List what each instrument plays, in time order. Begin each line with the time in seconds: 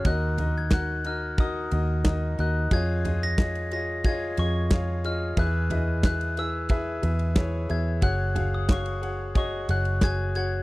0.05 fingered electric bass D#2, grand piano D#3 D#4 F#4 A#4 D#5, glockenspiel F#6, kick, ride
0.38 grand piano D#4 F#4 A#4 D#5, floor tom, ride
0.58 glockenspiel G#6
0.71 grand piano D#4 F#4 A#4 F#5, glockenspiel F#6, kick, snare, clap, ride
1.04 grand piano D#4 F#4 A#4 D#5, glockenspiel F6, ride
1.38 grand piano D#4 F#4 A#4 D#5, glockenspiel D#6, kick, ride
1.71 fingered electric bass D#2, grand piano D#4 F#4 A#4 D#5, ride
2.05 grand piano D#4 F#4 A#4 D#5, kick, snare, clap, ride
2.38 fingered electric bass D#2, grand piano D#4 F#4 A#4 D#5, glockenspiel F#6, ride
2.71 fingered electric bass F2, grand piano F4 G#4 C#5 D#5, glockenspiel G#6, kick, ride
3.04 grand piano F4 G#4 C#5 D#5, floor tom, ride
3.23 glockenspiel A#6
3.38 grand piano F4 G#4 C#5 D#5, kick, snare, clap, ride
3.55 ride
3.71 grand piano F4 G#4 C#5 D#5, glockenspiel A#6, ride
4.04 grand piano F4 G#4 C#5 D#5, glockenspiel G#6, kick, ride
4.37 fingered electric bass F2, grand piano F4 G#4 C#5 D#5, glockenspiel C#6, ride
4.71 grand piano F4 G#4 C#5 F5, kick, snare, clap, ride
5.04 grand piano F4 G#4 C#5 D#5, glockenspiel F6, ride
5.37 fingered electric bass E2, grand piano E3 E4 G#4 B4 E5, glockenspiel F#6, kick, ride
5.70 grand piano E4 G#4 B4 D#5, floor tom, ride
6.03 grand piano E4 G#4 B4 E5, glockenspiel F#6, kick, snare, clap, ride
6.21 ride
6.37 grand piano E4 G#4 B4 E5, glockenspiel E6, ride
6.69 grand piano E4 G#4 B4 E5, kick, ride
7.02 fingered electric bass E2, grand piano E4 G#4 B4 E5, ride
7.19 ride
7.35 grand piano E4 G#4 B4 C#5, kick, snare, clap, ride
7.69 fingered electric bass E2, grand piano E4 G#4 B4 E5, glockenspiel G#6, ride
8.01 fingered electric bass F#1, grand piano F#4 G#4 C#5 F#5, glockenspiel F#6, kick, ride
8.35 grand piano F#4 G#4 C#5 F5, floor tom, ride
8.54 glockenspiel D#6
8.68 grand piano F#4 G#4 C#5 F5, glockenspiel C#6, kick, snare, clap, ride
8.86 ride
9.01 grand piano F#4 G#4 C#5 F#5, ride
9.35 grand piano F#4 G#4 C#5 D#5, glockenspiel C#6, kick, ride
9.69 fingered electric bass F#1, grand piano F#4 G#4 C#5 F#5, glockenspiel F#6, ride
9.85 ride
10.01 grand piano F#4 G#4 C#5 G#5, glockenspiel G#6, kick, snare, clap, ride
10.35 grand piano F#4 G#4 C#5 F#5, glockenspiel G#6, ride